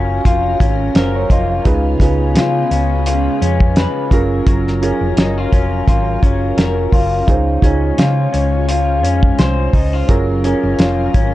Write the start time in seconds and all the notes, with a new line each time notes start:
Already playing: F#1 F#3 C#4 F4 G#4 A#4
0.25 F1 F4, kick, closed hi-hat
0.60 G#1 C#4, kick, closed hi-hat
0.95 F#1 A#4 C5, snare, closed hi-hat
1.15 C#5
1.30 F1 F4 D#5, kick, closed hi-hat
1.50 F5
1.64 C#2 C#3 G#3 B3 D#4 F4 G#4 B4, kick, closed hi-hat
2.00 C#2 C#4 D#4 F4 G#4 B4, kick, closed hi-hat
2.35 C#3 F4, snare, closed hi-hat
2.71 C#2 C#4, closed hi-hat
3.06 F4, closed hi-hat
3.41 F2 C#4, closed hi-hat
3.60 kick
3.76 B4, snare, closed hi-hat
4.11 F#1 F#3 C#4 F4 G#4 A#4, kick, closed hi-hat
4.47 F#1 F#3, kick, closed hi-hat
4.67 snare
4.81 C#4 F4 G#4 A#4, closed hi-hat
5.01 F1
5.17 F#1 D#4, snare, closed hi-hat
5.38 F4
5.52 F1 C#4, kick, closed hi-hat
5.88 G#1 F4, kick, closed hi-hat
6.23 F#1 C#4, kick, closed hi-hat
6.57 F1 A#4, snare, closed hi-hat
6.92 F#1 F4, kick, open hi-hat
7.27 C#2 G#3 C#4 D#4 F4 G#4 C5, kick, closed hi-hat
7.62 C#2 C#4 D#4 F4 G#4 C#5, kick, closed hi-hat
7.98 C#3 F4, snare, closed hi-hat
8.33 C#2 C#4, closed hi-hat
8.68 F4, closed hi-hat
9.03 F2 C#4, closed hi-hat
9.23 kick
9.39 C2 C5, snare, closed hi-hat
9.73 C#2 D#4, kick, open hi-hat
9.93 F4
10.08 F#1 F#3 C#4 F4 G#4 A#4, kick, closed hi-hat
10.44 C#4 F4 G#4 A#4, closed hi-hat
10.63 F#1
10.79 F1 F4, snare, closed hi-hat
11.14 G#1 C#4, kick, closed hi-hat